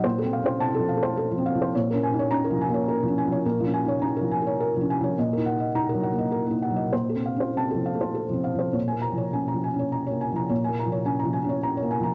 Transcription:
<<
  \new Staff \with { instrumentName = "Felt piano" } { \time 3/4 \key bes \minor \tempo 4 = 105 << { r4 a''8 r4. | r4 bes''8 r4. | r2. | r4 bes''8 r4. |
r4 a''8 r4. | r8 bes''8 r2 | r2. | } \\ { c''16 a'16 f''16 c''8 a'16 f''16 c''16 a'16 f16 f''16 c''16 | des''16 bes'16 aes''16 des''8 bes'16 aes''16 des''16 bes'16 f16 aes''16 des''16 | bes'16 f16 aes''16 des''16 bes''16 bes'16 aes''16 des''16 bes'16 f16 aes''16 des''16 | ees''16 bes'16 ges''16 ees''8 bes'16 ges''16 ees''16 bes'16 bes16 ges''16 ees''16 |
c''16 a'16 f''16 c''8 a'16 f''16 c''16 a'16 f16 f''16 c''16 | des''16 aes''8 des''16 aes''16 bes''16 aes''16 des''16 bes''16 des''16 aes''16 bes''16 | des''16 aes''16 bes''16 des''16 aes''16 bes''16 aes''16 des''16 bes''16 des''16 aes''16 bes''16 | } >> }
  \new Staff \with { instrumentName = "Felt piano" } { \time 3/4 \key bes \minor \tuplet 3/2 { bes,8 c'8 des'8 c'8 f8 a8~ a8 c'8 f8 } | \tuplet 3/2 { bes,8 des'8 ees'8 des'8 f8 bes8~ bes8 des'8 f8 } | \tuplet 3/2 { bes,8 des'8 ees'8 des'8 f8 bes8~ bes8 des'8 f8 } | \tuplet 3/2 { bes,8 ees'4 ees'8 ges8 bes8~ bes8 ees'8 ges8 } |
\tuplet 3/2 { bes,8 c'8 des'8 c'8 f8 a8~ a8 c'8 f8 } | \tuplet 3/2 { bes,8 bes8 f8 des'8 f8 des'8~ des'8 bes8 f8 } | \tuplet 3/2 { bes,8 bes8 f8 des'8 f8 des'8~ des'8 bes8 f8 } | }
>>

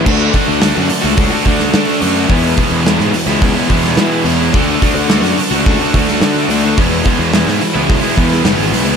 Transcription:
<<
  \new Staff \with { instrumentName = "Distorted electric guitar" } { \time 4/4 \key d \lydian \tempo 4 = 107 <d a d' fis'>8 <d a d' fis'>8 <d a d' fis'>16 <a d' fis'>8 <a d' fis'>8 <a d' fis'>16 <d a d' fis'>16 <a d' fis'>16 <d a d' fis'>16 <a d' fis'>8 <a d' fis'>16 | <e gis b e'>8 <e gis b e'>8 <e gis b e'>16 <gis b e'>8 <gis b e'>8 <gis b e'>16 <e gis b e'>16 <gis b e'>16 <e gis b e'>16 <gis b e'>8 <gis b e'>16 | <d a d' fis'>8 <d a d' fis'>8 <d a d' fis'>16 <a d' fis'>8 <a d' fis'>8 <a d' fis'>16 <d a d' fis'>16 <a d' fis'>16 <d a d' fis'>16 <a d' fis'>8 <a d' fis'>16 | <e gis b e'>8 <e gis b e'>8 <e gis b e'>16 <gis b e'>8 <gis b e'>8 <gis b e'>16 <e gis b e'>16 <gis b e'>16 <e gis b e'>16 <gis b e'>8 <gis b e'>16 | }
  \new Staff \with { instrumentName = "Overdriven electric guitar" } { \time 4/4 \key d \lydian <d a d' fis'>8 <d a d' fis'>8 <d a d' fis'>16 <a d' fis'>8 <a d' fis'>8 <a d' fis'>16 <d a d' fis'>8 <d a d' fis'>8 <d a d' fis'>16 <a d' fis'>16 | <e gis b e'>8 <e gis b e'>8 <e gis b e'>16 <gis b e'>8 <gis b e'>8 <gis b e'>16 <e gis b e'>8 <e gis b e'>8 <e gis b e'>16 <gis b e'>16 | <d a d' fis'>8 <d a d' fis'>8 <d a d' fis'>16 <a d' fis'>8 <a d' fis'>8 <a d' fis'>16 <d a d' fis'>8 <d a d' fis'>8 <d a d' fis'>16 <a d' fis'>16 | <e gis b e'>8 <e gis b e'>8 <e gis b e'>16 <gis b e'>8 <gis b e'>8 <gis b e'>16 <e gis b e'>8 <e gis b e'>8 <e gis b e'>16 <gis b e'>16 | }
  \new Staff \with { instrumentName = "Distorted electric guitar" } { \clef bass \time 4/4 \key d \lydian <d a d'>8 <d a d'>8 <d a d'>8 <d a d'>8 <d a d'>8 <d a d'>8 <d a d'>8 <d a d'>8 | <e, b, e>8 <e, b, e>8 <e, b, e>8 <e, b, e>8 <e, b, e>8 <e, b, e>8 <e, b, e>8 <e, b, e>8 | <d a d'>8 <d a d'>8 <d a d'>8 <d a d'>8 <d a d'>8 <d a d'>8 <d a d'>8 <d a d'>8 | <e, b, e>8 <e, b, e>8 <e, b, e>8 <e, b, e>8 <e, b, e>8 <e, b, e>8 <e, b, e>8 <e, b, e>8 | }
  \new Staff \with { instrumentName = "Picked electric bass" } { \clef bass \time 4/4 \key d \lydian d,8 r16 d,8 fis,16 r16 cis,8 r16 d,8 d8 fis,8 | e,8 r16 e,8 gis,16 r16 cis,8 r16 e,8 e8 e,8 | d,8 r16 d,8 fis,16 r16 cis,8 r16 d,8 d8 d,8 | e,8 r16 e,8 gis,16 r16 cis,8 r16 e,8 fis,,16 gis,,16 b,,16 cis,16 | }
  \new DrumStaff \with { instrumentName = "Drums" } \drummode { \time 4/4 <cymc bd>8 <hho bd>8 <hho sn>8 hho8 <hho bd>8 <hho bd>16 sn16 <hho sn>8 hho8 | <hho bd>8 <hho bd>8 <hho sn>16 sn16 hho8 <hho bd>8 <hho bd>16 sn16 <hho sn>8 hho8 | <hho bd>8 <hho bd>8 <hho sn>16 sn16 hho8 <hho bd>8 <hho bd>16 sn16 <hho sn>8 hho8 | <hho bd>8 <hho bd>8 <hho sn>16 sn16 hho8 <hho bd>8 <hho bd>16 sn16 <hho sn>8 hho8 | }
>>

